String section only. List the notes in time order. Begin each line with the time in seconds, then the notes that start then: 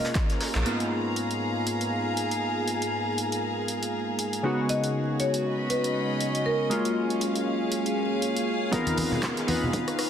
Already playing: C#4 G#4 F5 A#5
4.44 C#4
4.77 F#4
5.46 D#5 B5
7.01 G#4
7.11 F5
8.73 B3